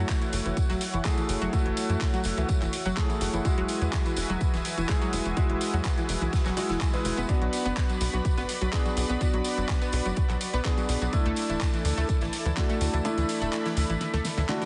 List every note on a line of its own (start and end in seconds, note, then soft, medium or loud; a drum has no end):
0.00 0.78 A3 loud
0.00 0.78 E4 medium
0.00 0.78 F#4 loud
0.00 11.09 F#4 medium
0.00 3.41 C#5 medium
0.00 7.25 E5 medium
0.00 3.41 F#5 medium
0.09 kick loud
0.09 snare loud
0.09 clap loud
0.09 closed hi-hat medium
0.09 tambourine medium
0.22 0.26 E3 medium
0.22 closed hi-hat soft
0.22 tambourine soft
0.32 0.41 F#1 loud
0.32 open hi-hat loud
0.32 ride medium
0.32 tambourine loud
0.45 0.53 F#1 medium
0.45 0.50 E3 medium
0.45 closed hi-hat soft
0.45 ride soft
0.45 tambourine soft
0.57 kick loud
0.57 closed hi-hat medium
0.57 tambourine medium
0.69 0.77 E1 medium
0.69 0.77 F#3 loud
0.69 snare soft
0.69 closed hi-hat soft
0.69 tambourine soft
0.81 open hi-hat loud
0.81 ride medium
0.81 tambourine loud
0.93 1.01 F#1 medium
0.93 0.98 E3 medium
0.93 closed hi-hat soft
0.93 tambourine soft
1.05 1.50 A3 medium
1.05 1.50 E4 medium
1.05 1.50 G#4 medium
1.05 kick loud
1.05 snare loud
1.05 clap loud
1.05 closed hi-hat medium
1.05 ride loud
1.05 tambourine medium
1.18 1.22 E3 medium
1.18 closed hi-hat soft
1.18 tambourine soft
1.29 1.37 F#1 loud
1.29 open hi-hat loud
1.29 ride medium
1.29 tambourine medium
1.42 1.49 F#1 medium
1.42 1.49 F#3 loud
1.42 closed hi-hat soft
1.42 tambourine soft
1.53 2.70 A3 loud
1.53 2.70 E4 medium
1.53 2.70 F#4 loud
1.53 kick loud
1.53 closed hi-hat medium
1.53 ride medium
1.53 tambourine medium
1.66 1.73 F#1 medium
1.66 1.70 E3 medium
1.66 closed hi-hat soft
1.76 open hi-hat loud
1.76 ride medium
1.76 tambourine medium
1.90 1.97 F#2 medium
1.90 1.94 E3 medium
1.90 closed hi-hat soft
1.90 tambourine soft
2.01 kick loud
2.01 snare loud
2.01 clap loud
2.01 closed hi-hat medium
2.01 tambourine medium
2.14 2.21 F#3 loud
2.14 closed hi-hat soft
2.14 tambourine soft
2.24 2.33 F#1 medium
2.24 open hi-hat loud
2.24 ride medium
2.24 tambourine medium
2.37 2.45 C#2 medium
2.37 2.42 E3 medium
2.37 closed hi-hat soft
2.37 ride soft
2.37 tambourine soft
2.49 kick loud
2.49 closed hi-hat medium
2.49 ride loud
2.49 tambourine medium
2.62 2.69 F#1 medium
2.62 2.66 E3 medium
2.62 clap soft
2.62 closed hi-hat soft
2.62 tambourine soft
2.73 open hi-hat loud
2.73 ride medium
2.73 tambourine loud
2.85 2.93 F#1 medium
2.85 2.93 F#3 loud
2.85 closed hi-hat soft
2.85 tambourine soft
2.97 3.42 A3 medium
2.97 3.42 E4 medium
2.97 3.42 G#4 medium
2.97 kick loud
2.97 snare loud
2.97 clap loud
2.97 closed hi-hat medium
2.97 tambourine medium
3.10 3.14 E3 medium
3.10 closed hi-hat soft
3.10 tambourine soft
3.21 3.29 F#1 loud
3.21 snare medium
3.21 open hi-hat loud
3.21 ride medium
3.21 tambourine medium
3.33 3.41 F#1 medium
3.33 3.38 E3 medium
3.33 closed hi-hat soft
3.33 tambourine soft
3.45 4.62 G#3 loud
3.45 4.62 E4 medium
3.45 4.62 F#4 loud
3.45 11.09 B4 medium
3.45 7.25 G#5 medium
3.45 kick loud
3.45 closed hi-hat medium
3.45 tambourine medium
3.58 3.65 E1 medium
3.58 3.65 F#3 loud
3.58 closed hi-hat soft
3.58 ride soft
3.68 open hi-hat loud
3.68 ride medium
3.68 tambourine medium
3.81 3.89 E2 medium
3.81 3.86 E3 medium
3.81 closed hi-hat soft
3.81 tambourine soft
3.93 kick loud
3.93 snare loud
3.93 clap loud
3.93 closed hi-hat medium
3.93 tambourine medium
4.06 4.10 E3 medium
4.06 closed hi-hat soft
4.06 tambourine soft
4.16 4.25 E1 loud
4.16 open hi-hat loud
4.16 ride medium
4.16 tambourine loud
4.29 4.37 E1 medium
4.29 4.37 F#3 loud
4.29 closed hi-hat soft
4.29 ride soft
4.40 kick loud
4.40 closed hi-hat medium
4.40 ride medium
4.40 tambourine medium
4.54 4.61 D1 medium
4.54 4.58 E3 medium
4.54 snare soft
4.54 closed hi-hat soft
4.54 tambourine soft
4.65 open hi-hat loud
4.65 ride medium
4.65 tambourine medium
4.78 4.85 E1 medium
4.78 4.82 E3 medium
4.78 closed hi-hat soft
4.78 tambourine soft
4.89 5.34 G#3 medium
4.89 5.34 E4 medium
4.89 5.34 G#4 medium
4.89 kick loud
4.89 snare loud
4.89 clap loud
4.89 closed hi-hat medium
4.89 tambourine medium
5.02 5.09 F#3 loud
5.02 closed hi-hat soft
5.02 tambourine soft
5.13 5.21 E1 loud
5.13 open hi-hat loud
5.13 ride medium
5.13 tambourine loud
5.25 5.33 E1 medium
5.25 5.30 E3 medium
5.25 closed hi-hat soft
5.25 tambourine soft
5.36 6.54 G#3 loud
5.36 6.54 E4 medium
5.36 6.54 F#4 loud
5.36 kick loud
5.36 closed hi-hat medium
5.36 ride medium
5.36 tambourine medium
5.50 5.57 E1 medium
5.50 5.54 E3 medium
5.50 closed hi-hat soft
5.61 open hi-hat loud
5.61 ride medium
5.61 tambourine loud
5.74 5.81 E2 medium
5.74 5.81 F#3 loud
5.74 closed hi-hat soft
5.74 tambourine soft
5.84 kick loud
5.84 snare loud
5.84 clap loud
5.84 closed hi-hat medium
5.84 tambourine medium
5.98 6.02 E3 medium
5.98 closed hi-hat soft
5.98 tambourine soft
6.09 6.17 E1 loud
6.09 open hi-hat loud
6.09 ride medium
6.09 tambourine loud
6.21 6.29 B1 medium
6.21 6.26 E3 medium
6.21 closed hi-hat soft
6.21 ride soft
6.21 tambourine soft
6.33 kick loud
6.33 snare loud
6.33 closed hi-hat medium
6.33 tambourine medium
6.45 6.53 E1 medium
6.45 6.53 F#3 loud
6.45 snare loud
6.45 clap soft
6.45 closed hi-hat soft
6.45 ride medium
6.45 tambourine soft
6.57 6.91 G#3 medium
6.57 6.91 E4 medium
6.57 6.91 F#4 medium
6.57 6.66 F#4 medium
6.57 snare loud
6.57 open hi-hat loud
6.57 ride medium
6.57 tambourine medium
6.69 6.77 E1 medium
6.69 6.77 E3 loud
6.69 snare loud
6.69 closed hi-hat soft
6.69 ride medium
6.69 tambourine soft
6.81 6.93 G#3 medium
6.81 kick loud
6.81 clap loud
6.81 closed hi-hat medium
6.81 tambourine medium
6.93 7.04 E3 medium
6.93 7.26 G#3 medium
6.93 7.26 E4 medium
6.93 7.26 B4 medium
6.93 snare soft
6.93 closed hi-hat soft
6.93 tambourine soft
7.05 7.13 E1 medium
7.05 snare medium
7.05 open hi-hat loud
7.05 ride medium
7.05 tambourine loud
7.17 7.25 E1 medium
7.17 7.22 B3 loud
7.17 closed hi-hat soft
7.17 tambourine soft
7.29 8.46 B3 loud
7.29 8.46 D4 medium
7.29 8.46 F#4 loud
7.29 14.65 D5 medium
7.29 11.09 B5 medium
7.29 kick loud
7.29 closed hi-hat medium
7.29 ride medium
7.29 tambourine medium
7.42 7.49 B1 medium
7.42 7.46 F#3 medium
7.42 closed hi-hat soft
7.42 ride soft
7.53 open hi-hat loud
7.53 ride medium
7.53 tambourine loud
7.65 7.73 F#1 medium
7.65 7.73 B3 loud
7.65 closed hi-hat soft
7.65 tambourine soft
7.77 kick loud
7.77 snare loud
7.77 clap loud
7.77 closed hi-hat medium
7.77 ride loud
7.77 tambourine medium
7.89 7.94 F#3 medium
7.89 closed hi-hat soft
7.89 tambourine soft
8.01 8.09 B1 loud
8.01 open hi-hat loud
8.01 ride medium
8.01 tambourine loud
8.13 8.21 B1 medium
8.13 8.18 F#3 medium
8.13 closed hi-hat soft
8.13 ride soft
8.13 tambourine soft
8.25 kick loud
8.25 closed hi-hat medium
8.25 ride medium
8.25 tambourine soft
8.38 8.45 A1 medium
8.38 8.45 B3 loud
8.38 snare soft
8.38 closed hi-hat soft
8.38 tambourine soft
8.49 open hi-hat loud
8.49 ride medium
8.49 tambourine medium
8.61 8.69 B1 medium
8.61 8.66 F#3 medium
8.61 closed hi-hat soft
8.61 tambourine soft
8.73 9.18 B3 medium
8.73 9.18 D4 medium
8.73 9.18 G#4 medium
8.73 kick loud
8.73 snare loud
8.73 clap loud
8.73 closed hi-hat medium
8.73 tambourine medium
8.85 8.90 F#3 medium
8.85 closed hi-hat soft
8.85 tambourine soft
8.97 9.05 B1 loud
8.97 open hi-hat loud
8.97 ride medium
8.97 tambourine medium
9.09 9.17 B1 medium
9.09 9.17 B3 loud
9.09 closed hi-hat soft
9.09 tambourine soft
9.21 10.38 B3 loud
9.21 10.38 D4 medium
9.21 10.38 F#4 loud
9.21 kick loud
9.21 closed hi-hat medium
9.21 tambourine medium
9.34 9.41 B1 medium
9.34 9.38 F#3 medium
9.34 closed hi-hat soft
9.44 open hi-hat loud
9.44 ride medium
9.44 tambourine loud
9.58 9.65 F#1 medium
9.58 9.62 F#3 medium
9.58 closed hi-hat soft
9.58 tambourine soft
9.69 kick loud
9.69 snare loud
9.69 clap loud
9.69 closed hi-hat medium
9.69 tambourine medium
9.82 9.89 B3 loud
9.82 closed hi-hat soft
9.82 tambourine soft
9.92 10.01 B1 loud
9.92 open hi-hat loud
9.92 ride medium
9.92 tambourine medium
10.06 10.13 F#1 medium
10.06 10.10 F#3 medium
10.06 closed hi-hat soft
10.06 ride soft
10.06 tambourine soft
10.16 kick loud
10.16 closed hi-hat medium
10.16 ride medium
10.16 tambourine soft
10.29 10.37 B1 medium
10.29 10.34 F#3 medium
10.29 clap soft
10.29 closed hi-hat soft
10.29 tambourine soft
10.41 open hi-hat loud
10.41 ride medium
10.41 tambourine medium
10.53 10.61 B1 medium
10.53 10.61 B3 loud
10.53 closed hi-hat soft
10.53 tambourine soft
10.65 11.10 B3 medium
10.65 11.10 D4 medium
10.65 11.10 G#4 medium
10.65 kick loud
10.65 snare loud
10.65 clap loud
10.65 closed hi-hat medium
10.65 tambourine soft
10.78 10.82 F#3 medium
10.78 closed hi-hat soft
10.78 tambourine soft
10.89 10.97 B1 loud
10.89 snare medium
10.89 open hi-hat loud
10.89 ride medium
10.89 tambourine medium
11.02 11.09 B1 medium
11.02 11.06 F#3 medium
11.02 closed hi-hat soft
11.02 tambourine soft
11.13 12.30 A3 loud
11.13 12.30 D4 medium
11.13 12.30 E4 loud
11.13 14.65 E4 medium
11.13 14.65 A4 medium
11.13 13.03 A5 medium
11.13 kick loud
11.13 closed hi-hat medium
11.13 ride loud
11.13 tambourine soft
11.26 11.33 D2 medium
11.26 11.33 A3 loud
11.26 closed hi-hat soft
11.26 ride soft
11.36 open hi-hat loud
11.36 ride medium
11.36 tambourine medium
11.49 11.57 D1 medium
11.49 11.54 E3 medium
11.49 closed hi-hat soft
11.49 tambourine soft
11.61 kick loud
11.61 snare loud
11.61 clap loud
11.61 closed hi-hat medium
11.61 tambourine medium
11.74 11.78 E3 medium
11.74 closed hi-hat soft
11.74 tambourine soft
11.85 11.93 D2 loud
11.85 open hi-hat loud
11.85 ride medium
11.85 tambourine medium
11.97 12.05 D2 medium
11.97 12.05 A3 loud
11.97 closed hi-hat soft
11.97 ride soft
11.97 tambourine soft
12.09 kick loud
12.09 closed hi-hat medium
12.09 ride medium
12.09 tambourine medium
12.21 12.29 A1 medium
12.21 12.26 E3 medium
12.21 snare soft
12.21 closed hi-hat soft
12.21 tambourine soft
12.33 open hi-hat loud
12.33 ride medium
12.33 tambourine medium
12.46 12.53 D2 medium
12.46 12.50 E3 medium
12.46 closed hi-hat soft
12.46 tambourine soft
12.56 13.02 A3 medium
12.56 13.02 D4 medium
12.56 13.02 F#4 medium
12.56 kick loud
12.56 snare loud
12.56 clap loud
12.56 closed hi-hat medium
12.56 tambourine medium
12.69 12.77 A3 loud
12.69 closed hi-hat soft
12.69 tambourine soft
12.81 12.89 D2 medium
12.81 open hi-hat loud
12.81 ride medium
12.81 tambourine medium
12.94 13.01 D2 medium
12.94 12.98 E3 medium
12.94 closed hi-hat soft
12.94 tambourine soft
13.05 14.22 A3 loud
13.05 14.22 D4 medium
13.05 14.22 E4 loud
13.05 14.65 B5 medium
13.05 closed hi-hat medium
13.05 ride medium
13.05 tambourine medium
13.18 13.25 D2 medium
13.18 13.22 E3 medium
13.18 closed hi-hat soft
13.18 tambourine soft
13.28 snare loud
13.28 open hi-hat loud
13.28 ride medium
13.28 tambourine medium
13.42 13.49 D1 medium
13.42 13.49 A3 loud
13.42 closed hi-hat soft
13.42 tambourine soft
13.52 clap loud
13.52 closed hi-hat medium
13.52 tambourine soft
13.65 13.70 E3 medium
13.65 snare loud
13.65 closed hi-hat soft
13.65 ride medium
13.65 tambourine soft
13.77 13.85 D2 loud
13.77 open hi-hat loud
13.77 tambourine medium
13.89 13.97 A1 medium
13.89 13.94 E3 medium
13.89 closed hi-hat soft
13.89 ride medium
13.89 tambourine soft
14.01 snare medium
14.01 closed hi-hat medium
14.01 ride medium
14.01 tambourine soft
14.14 14.21 D2 medium
14.14 14.21 A3 loud
14.14 snare medium
14.14 closed hi-hat soft
14.14 tambourine soft
14.25 snare loud
14.25 snare medium
14.25 open hi-hat loud
14.25 ride medium
14.25 tambourine loud
14.38 14.45 D2 medium
14.38 14.42 E3 medium
14.38 snare medium
14.38 closed hi-hat soft
14.38 tambourine soft
14.49 14.65 A3 medium
14.49 14.65 D4 medium
14.49 14.65 F#4 medium
14.49 snare medium
14.49 clap loud
14.49 closed hi-hat medium
14.49 tambourine soft
14.61 14.65 E3 medium
14.61 snare loud
14.61 closed hi-hat soft
14.61 ride medium
14.61 tambourine soft